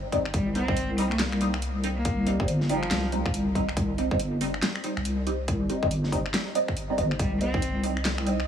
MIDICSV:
0, 0, Header, 1, 6, 480
1, 0, Start_track
1, 0, Key_signature, -3, "minor"
1, 0, Tempo, 428571
1, 377, Time_signature, 4, 2, 24, 8
1, 9492, End_track
2, 0, Start_track
2, 0, Title_t, "Synth texture"
2, 0, Program_c, 0, 99
2, 8055, Note_on_c, 0, 75, 87
2, 9492, Note_off_c, 0, 75, 0
2, 9492, End_track
3, 0, Start_track
3, 0, Title_t, "Synth stab"
3, 0, Program_c, 1, 62
3, 140, Note_on_c, 1, 60, 77
3, 140, Note_on_c, 1, 63, 92
3, 141, Note_on_c, 1, 55, 83
3, 280, Note_off_c, 1, 60, 0
3, 281, Note_off_c, 1, 55, 0
3, 281, Note_off_c, 1, 63, 0
3, 620, Note_on_c, 1, 55, 87
3, 620, Note_on_c, 1, 60, 80
3, 620, Note_on_c, 1, 63, 98
3, 744, Note_off_c, 1, 55, 0
3, 744, Note_off_c, 1, 60, 0
3, 744, Note_off_c, 1, 63, 0
3, 769, Note_on_c, 1, 55, 76
3, 770, Note_on_c, 1, 60, 73
3, 770, Note_on_c, 1, 63, 84
3, 856, Note_off_c, 1, 55, 0
3, 856, Note_off_c, 1, 60, 0
3, 856, Note_off_c, 1, 63, 0
3, 1101, Note_on_c, 1, 60, 85
3, 1102, Note_on_c, 1, 55, 94
3, 1102, Note_on_c, 1, 63, 106
3, 1241, Note_off_c, 1, 55, 0
3, 1241, Note_off_c, 1, 60, 0
3, 1241, Note_off_c, 1, 63, 0
3, 1581, Note_on_c, 1, 55, 85
3, 1581, Note_on_c, 1, 60, 74
3, 1582, Note_on_c, 1, 63, 92
3, 1721, Note_off_c, 1, 55, 0
3, 1721, Note_off_c, 1, 60, 0
3, 1721, Note_off_c, 1, 63, 0
3, 2060, Note_on_c, 1, 55, 82
3, 2060, Note_on_c, 1, 63, 92
3, 2061, Note_on_c, 1, 60, 79
3, 2200, Note_off_c, 1, 63, 0
3, 2201, Note_off_c, 1, 55, 0
3, 2201, Note_off_c, 1, 60, 0
3, 2540, Note_on_c, 1, 55, 85
3, 2540, Note_on_c, 1, 60, 81
3, 2540, Note_on_c, 1, 63, 95
3, 2664, Note_off_c, 1, 55, 0
3, 2664, Note_off_c, 1, 60, 0
3, 2665, Note_off_c, 1, 63, 0
3, 2688, Note_on_c, 1, 55, 77
3, 2688, Note_on_c, 1, 60, 71
3, 2688, Note_on_c, 1, 63, 83
3, 2775, Note_off_c, 1, 55, 0
3, 2775, Note_off_c, 1, 63, 0
3, 2776, Note_off_c, 1, 60, 0
3, 3020, Note_on_c, 1, 55, 97
3, 3021, Note_on_c, 1, 60, 89
3, 3021, Note_on_c, 1, 63, 107
3, 3160, Note_off_c, 1, 55, 0
3, 3161, Note_off_c, 1, 60, 0
3, 3161, Note_off_c, 1, 63, 0
3, 3500, Note_on_c, 1, 55, 84
3, 3500, Note_on_c, 1, 60, 77
3, 3500, Note_on_c, 1, 63, 91
3, 3640, Note_off_c, 1, 55, 0
3, 3641, Note_off_c, 1, 60, 0
3, 3641, Note_off_c, 1, 63, 0
3, 3981, Note_on_c, 1, 55, 84
3, 3981, Note_on_c, 1, 63, 93
3, 3982, Note_on_c, 1, 60, 77
3, 4121, Note_off_c, 1, 55, 0
3, 4121, Note_off_c, 1, 60, 0
3, 4121, Note_off_c, 1, 63, 0
3, 4460, Note_on_c, 1, 63, 94
3, 4461, Note_on_c, 1, 55, 87
3, 4461, Note_on_c, 1, 60, 79
3, 4585, Note_off_c, 1, 55, 0
3, 4585, Note_off_c, 1, 60, 0
3, 4585, Note_off_c, 1, 63, 0
3, 4608, Note_on_c, 1, 55, 79
3, 4609, Note_on_c, 1, 60, 70
3, 4609, Note_on_c, 1, 63, 83
3, 4695, Note_off_c, 1, 55, 0
3, 4696, Note_off_c, 1, 60, 0
3, 4696, Note_off_c, 1, 63, 0
3, 4940, Note_on_c, 1, 55, 95
3, 4940, Note_on_c, 1, 60, 86
3, 4940, Note_on_c, 1, 63, 106
3, 5080, Note_off_c, 1, 55, 0
3, 5080, Note_off_c, 1, 60, 0
3, 5080, Note_off_c, 1, 63, 0
3, 5420, Note_on_c, 1, 63, 93
3, 5421, Note_on_c, 1, 55, 83
3, 5421, Note_on_c, 1, 60, 78
3, 5561, Note_off_c, 1, 55, 0
3, 5561, Note_off_c, 1, 60, 0
3, 5561, Note_off_c, 1, 63, 0
3, 5900, Note_on_c, 1, 55, 86
3, 5900, Note_on_c, 1, 60, 77
3, 5900, Note_on_c, 1, 63, 95
3, 6040, Note_off_c, 1, 55, 0
3, 6040, Note_off_c, 1, 60, 0
3, 6041, Note_off_c, 1, 63, 0
3, 6379, Note_on_c, 1, 55, 85
3, 6379, Note_on_c, 1, 60, 79
3, 6380, Note_on_c, 1, 63, 98
3, 6504, Note_off_c, 1, 55, 0
3, 6504, Note_off_c, 1, 60, 0
3, 6504, Note_off_c, 1, 63, 0
3, 6528, Note_on_c, 1, 55, 76
3, 6528, Note_on_c, 1, 60, 72
3, 6528, Note_on_c, 1, 63, 86
3, 6615, Note_off_c, 1, 60, 0
3, 6615, Note_off_c, 1, 63, 0
3, 6616, Note_off_c, 1, 55, 0
3, 6858, Note_on_c, 1, 60, 87
3, 6858, Note_on_c, 1, 63, 104
3, 6859, Note_on_c, 1, 55, 97
3, 6999, Note_off_c, 1, 60, 0
3, 7000, Note_off_c, 1, 55, 0
3, 7000, Note_off_c, 1, 63, 0
3, 7338, Note_on_c, 1, 55, 89
3, 7338, Note_on_c, 1, 60, 81
3, 7339, Note_on_c, 1, 63, 100
3, 7479, Note_off_c, 1, 60, 0
3, 7480, Note_off_c, 1, 55, 0
3, 7480, Note_off_c, 1, 63, 0
3, 7727, Note_on_c, 1, 55, 92
3, 7727, Note_on_c, 1, 60, 82
3, 7727, Note_on_c, 1, 63, 100
3, 7805, Note_off_c, 1, 55, 0
3, 7805, Note_off_c, 1, 60, 0
3, 7805, Note_off_c, 1, 63, 0
3, 7820, Note_on_c, 1, 55, 87
3, 7820, Note_on_c, 1, 60, 80
3, 7820, Note_on_c, 1, 63, 96
3, 8016, Note_off_c, 1, 55, 0
3, 8016, Note_off_c, 1, 60, 0
3, 8016, Note_off_c, 1, 63, 0
3, 8298, Note_on_c, 1, 55, 88
3, 8298, Note_on_c, 1, 60, 80
3, 8298, Note_on_c, 1, 63, 97
3, 8423, Note_off_c, 1, 55, 0
3, 8424, Note_off_c, 1, 60, 0
3, 8424, Note_off_c, 1, 63, 0
3, 8445, Note_on_c, 1, 55, 77
3, 8445, Note_on_c, 1, 60, 70
3, 8445, Note_on_c, 1, 63, 87
3, 8534, Note_off_c, 1, 55, 0
3, 8534, Note_off_c, 1, 60, 0
3, 8534, Note_off_c, 1, 63, 0
3, 8778, Note_on_c, 1, 55, 97
3, 8778, Note_on_c, 1, 60, 86
3, 8778, Note_on_c, 1, 63, 105
3, 8919, Note_off_c, 1, 55, 0
3, 8919, Note_off_c, 1, 60, 0
3, 8919, Note_off_c, 1, 63, 0
3, 9259, Note_on_c, 1, 55, 86
3, 9259, Note_on_c, 1, 63, 89
3, 9260, Note_on_c, 1, 60, 75
3, 9400, Note_off_c, 1, 55, 0
3, 9400, Note_off_c, 1, 60, 0
3, 9400, Note_off_c, 1, 63, 0
3, 9492, End_track
4, 0, Start_track
4, 0, Title_t, "Cello"
4, 0, Program_c, 2, 42
4, 380, Note_on_c, 2, 55, 89
4, 600, Note_off_c, 2, 55, 0
4, 617, Note_on_c, 2, 60, 94
4, 1005, Note_off_c, 2, 60, 0
4, 1102, Note_on_c, 2, 63, 91
4, 1218, Note_off_c, 2, 63, 0
4, 1246, Note_on_c, 2, 58, 92
4, 1578, Note_off_c, 2, 58, 0
4, 2205, Note_on_c, 2, 58, 95
4, 2537, Note_off_c, 2, 58, 0
4, 3019, Note_on_c, 2, 53, 96
4, 3406, Note_off_c, 2, 53, 0
4, 8054, Note_on_c, 2, 55, 91
4, 8278, Note_off_c, 2, 55, 0
4, 8299, Note_on_c, 2, 60, 93
4, 8686, Note_off_c, 2, 60, 0
4, 9492, End_track
5, 0, Start_track
5, 0, Title_t, "Wobble bass"
5, 0, Program_c, 3, 39
5, 379, Note_on_c, 3, 36, 101
5, 2667, Note_off_c, 3, 36, 0
5, 2687, Note_on_c, 3, 31, 91
5, 3247, Note_off_c, 3, 31, 0
5, 3259, Note_on_c, 3, 36, 100
5, 3627, Note_off_c, 3, 36, 0
5, 3646, Note_on_c, 3, 36, 100
5, 4587, Note_off_c, 3, 36, 0
5, 4607, Note_on_c, 3, 31, 91
5, 5167, Note_off_c, 3, 31, 0
5, 5566, Note_on_c, 3, 36, 87
5, 6367, Note_off_c, 3, 36, 0
5, 6526, Note_on_c, 3, 31, 92
5, 7086, Note_off_c, 3, 31, 0
5, 7818, Note_on_c, 3, 31, 85
5, 8043, Note_off_c, 3, 31, 0
5, 8058, Note_on_c, 3, 36, 103
5, 9492, Note_off_c, 3, 36, 0
5, 9492, End_track
6, 0, Start_track
6, 0, Title_t, "Drums"
6, 139, Note_on_c, 9, 36, 65
6, 140, Note_on_c, 9, 42, 50
6, 251, Note_off_c, 9, 36, 0
6, 252, Note_off_c, 9, 42, 0
6, 285, Note_on_c, 9, 26, 53
6, 378, Note_on_c, 9, 42, 75
6, 379, Note_on_c, 9, 36, 120
6, 397, Note_off_c, 9, 26, 0
6, 490, Note_off_c, 9, 42, 0
6, 491, Note_off_c, 9, 36, 0
6, 618, Note_on_c, 9, 42, 51
6, 730, Note_off_c, 9, 42, 0
6, 766, Note_on_c, 9, 36, 109
6, 858, Note_on_c, 9, 42, 79
6, 878, Note_off_c, 9, 36, 0
6, 970, Note_off_c, 9, 42, 0
6, 1098, Note_on_c, 9, 46, 92
6, 1210, Note_off_c, 9, 46, 0
6, 1246, Note_on_c, 9, 26, 54
6, 1337, Note_on_c, 9, 38, 120
6, 1337, Note_on_c, 9, 39, 86
6, 1337, Note_on_c, 9, 42, 78
6, 1358, Note_off_c, 9, 26, 0
6, 1449, Note_off_c, 9, 38, 0
6, 1449, Note_off_c, 9, 39, 0
6, 1449, Note_off_c, 9, 42, 0
6, 1484, Note_on_c, 9, 26, 65
6, 1577, Note_on_c, 9, 42, 51
6, 1596, Note_off_c, 9, 26, 0
6, 1689, Note_off_c, 9, 42, 0
6, 1724, Note_on_c, 9, 26, 56
6, 1816, Note_on_c, 9, 42, 77
6, 1836, Note_off_c, 9, 26, 0
6, 1928, Note_off_c, 9, 42, 0
6, 2056, Note_on_c, 9, 42, 51
6, 2168, Note_off_c, 9, 42, 0
6, 2296, Note_on_c, 9, 42, 78
6, 2299, Note_on_c, 9, 36, 115
6, 2408, Note_off_c, 9, 42, 0
6, 2411, Note_off_c, 9, 36, 0
6, 2538, Note_on_c, 9, 42, 52
6, 2650, Note_off_c, 9, 42, 0
6, 2686, Note_on_c, 9, 36, 108
6, 2778, Note_on_c, 9, 42, 79
6, 2798, Note_off_c, 9, 36, 0
6, 2890, Note_off_c, 9, 42, 0
6, 2927, Note_on_c, 9, 38, 36
6, 3018, Note_on_c, 9, 46, 96
6, 3039, Note_off_c, 9, 38, 0
6, 3130, Note_off_c, 9, 46, 0
6, 3166, Note_on_c, 9, 26, 52
6, 3258, Note_on_c, 9, 38, 115
6, 3258, Note_on_c, 9, 39, 85
6, 3258, Note_on_c, 9, 42, 81
6, 3278, Note_off_c, 9, 26, 0
6, 3370, Note_off_c, 9, 38, 0
6, 3370, Note_off_c, 9, 39, 0
6, 3370, Note_off_c, 9, 42, 0
6, 3498, Note_on_c, 9, 42, 53
6, 3610, Note_off_c, 9, 42, 0
6, 3646, Note_on_c, 9, 36, 99
6, 3647, Note_on_c, 9, 26, 53
6, 3740, Note_on_c, 9, 42, 80
6, 3758, Note_off_c, 9, 36, 0
6, 3759, Note_off_c, 9, 26, 0
6, 3852, Note_off_c, 9, 42, 0
6, 3979, Note_on_c, 9, 36, 60
6, 3981, Note_on_c, 9, 42, 52
6, 4091, Note_off_c, 9, 36, 0
6, 4093, Note_off_c, 9, 42, 0
6, 4128, Note_on_c, 9, 26, 53
6, 4219, Note_on_c, 9, 36, 114
6, 4220, Note_on_c, 9, 42, 84
6, 4240, Note_off_c, 9, 26, 0
6, 4331, Note_off_c, 9, 36, 0
6, 4332, Note_off_c, 9, 42, 0
6, 4460, Note_on_c, 9, 42, 54
6, 4572, Note_off_c, 9, 42, 0
6, 4607, Note_on_c, 9, 36, 105
6, 4699, Note_on_c, 9, 42, 84
6, 4719, Note_off_c, 9, 36, 0
6, 4811, Note_off_c, 9, 42, 0
6, 4938, Note_on_c, 9, 46, 98
6, 5050, Note_off_c, 9, 46, 0
6, 5087, Note_on_c, 9, 26, 52
6, 5180, Note_on_c, 9, 38, 115
6, 5180, Note_on_c, 9, 39, 86
6, 5180, Note_on_c, 9, 42, 84
6, 5199, Note_off_c, 9, 26, 0
6, 5292, Note_off_c, 9, 38, 0
6, 5292, Note_off_c, 9, 39, 0
6, 5292, Note_off_c, 9, 42, 0
6, 5326, Note_on_c, 9, 26, 60
6, 5418, Note_on_c, 9, 42, 55
6, 5438, Note_off_c, 9, 26, 0
6, 5530, Note_off_c, 9, 42, 0
6, 5567, Note_on_c, 9, 26, 52
6, 5658, Note_on_c, 9, 42, 82
6, 5679, Note_off_c, 9, 26, 0
6, 5770, Note_off_c, 9, 42, 0
6, 5899, Note_on_c, 9, 42, 56
6, 6011, Note_off_c, 9, 42, 0
6, 6138, Note_on_c, 9, 42, 80
6, 6139, Note_on_c, 9, 36, 113
6, 6250, Note_off_c, 9, 42, 0
6, 6251, Note_off_c, 9, 36, 0
6, 6379, Note_on_c, 9, 42, 57
6, 6491, Note_off_c, 9, 42, 0
6, 6526, Note_on_c, 9, 36, 102
6, 6619, Note_on_c, 9, 42, 85
6, 6638, Note_off_c, 9, 36, 0
6, 6731, Note_off_c, 9, 42, 0
6, 6767, Note_on_c, 9, 38, 35
6, 6858, Note_on_c, 9, 36, 60
6, 6860, Note_on_c, 9, 46, 92
6, 6879, Note_off_c, 9, 38, 0
6, 6970, Note_off_c, 9, 36, 0
6, 6972, Note_off_c, 9, 46, 0
6, 7007, Note_on_c, 9, 26, 51
6, 7099, Note_on_c, 9, 38, 115
6, 7099, Note_on_c, 9, 39, 93
6, 7099, Note_on_c, 9, 42, 85
6, 7119, Note_off_c, 9, 26, 0
6, 7211, Note_off_c, 9, 38, 0
6, 7211, Note_off_c, 9, 39, 0
6, 7211, Note_off_c, 9, 42, 0
6, 7339, Note_on_c, 9, 42, 55
6, 7451, Note_off_c, 9, 42, 0
6, 7486, Note_on_c, 9, 26, 51
6, 7486, Note_on_c, 9, 36, 101
6, 7578, Note_on_c, 9, 42, 83
6, 7598, Note_off_c, 9, 26, 0
6, 7598, Note_off_c, 9, 36, 0
6, 7690, Note_off_c, 9, 42, 0
6, 7818, Note_on_c, 9, 36, 61
6, 7818, Note_on_c, 9, 42, 55
6, 7930, Note_off_c, 9, 36, 0
6, 7930, Note_off_c, 9, 42, 0
6, 7966, Note_on_c, 9, 26, 49
6, 8058, Note_on_c, 9, 36, 122
6, 8058, Note_on_c, 9, 42, 83
6, 8078, Note_off_c, 9, 26, 0
6, 8170, Note_off_c, 9, 36, 0
6, 8170, Note_off_c, 9, 42, 0
6, 8297, Note_on_c, 9, 42, 56
6, 8409, Note_off_c, 9, 42, 0
6, 8446, Note_on_c, 9, 36, 108
6, 8537, Note_on_c, 9, 42, 85
6, 8558, Note_off_c, 9, 36, 0
6, 8649, Note_off_c, 9, 42, 0
6, 8776, Note_on_c, 9, 46, 90
6, 8888, Note_off_c, 9, 46, 0
6, 8925, Note_on_c, 9, 26, 50
6, 9017, Note_on_c, 9, 38, 121
6, 9017, Note_on_c, 9, 39, 92
6, 9017, Note_on_c, 9, 42, 84
6, 9037, Note_off_c, 9, 26, 0
6, 9129, Note_off_c, 9, 38, 0
6, 9129, Note_off_c, 9, 39, 0
6, 9129, Note_off_c, 9, 42, 0
6, 9164, Note_on_c, 9, 26, 61
6, 9258, Note_on_c, 9, 42, 55
6, 9276, Note_off_c, 9, 26, 0
6, 9370, Note_off_c, 9, 42, 0
6, 9405, Note_on_c, 9, 26, 52
6, 9492, Note_off_c, 9, 26, 0
6, 9492, End_track
0, 0, End_of_file